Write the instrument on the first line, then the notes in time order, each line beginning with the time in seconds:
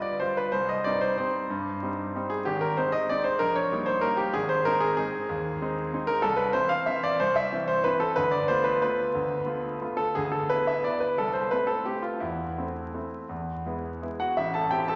grand piano
Already playing: G3 F4
0.02 D5
0.20 G3 F4 C5
0.37 B4
0.52 C2 C5
0.69 D#5
0.84 G3 C4 D#4 D5
1.01 C5
1.18 G3 C4 D#4 C5
1.50 G2
1.83 G3 C4 D#4
2.16 G3 C4 D#4
2.30 G#4
2.45 G#1 G4
2.61 A#4
2.77 G#3 C4 D#4 C5
2.92 D#5
3.09 G#3 C4 D#4 D5
3.24 C5
3.39 A#1 A#4
3.56 C#5
3.72 G3 A#3 D#4
3.86 C5
4.01 G3 A#3 D#4 A#4
4.17 G4
4.34 G#1 G#4
4.49 C5
4.65 G#3 C4 D#4 A#4
4.80 G#4
4.97 G#3 C4 D#4 G#4
5.29 D#2
5.61 G#3 C4 D#4
5.93 G#3 C4 D#4
6.07 A#4
6.22 C2 A4
6.37 B4
6.53 E3 C4 E4 C5
6.69 F5
6.86 E3 C4 E4 E5
7.03 D5
7.20 C2 C5
7.36 E5
7.52 E3 C4 E4
7.68 C5
7.84 E3 C4 E4 B4
8.00 A4
8.16 D2 B4
8.31 D5
8.48 A3 B3 F4 C5
8.64 B4
8.82 A3 B3 F4 B4
9.15 D2
9.46 A3 B3 F4
9.81 A3 B3 F4
9.97 A4
10.15 D2 G#4
10.32 A4
10.49 B3 E4 B4
10.67 E5
10.84 B3 E4 D5
11.00 B4
11.18 C2 A4
11.33 C5
11.51 A3 C4 E4 B4
11.67 A4
11.85 A3 C4 E4 G4
12.02 F4
12.20 E2 E4
12.58 A3 C4 E4
12.94 A3 C4 E4
13.29 E2
13.66 G#3 B3 E4
14.02 G#3 B3 E4
14.20 F#4 F#5
14.37 A1 E4 E5
14.54 A4 A5
14.71 C4 E4 G4 G5
14.88 A4 A5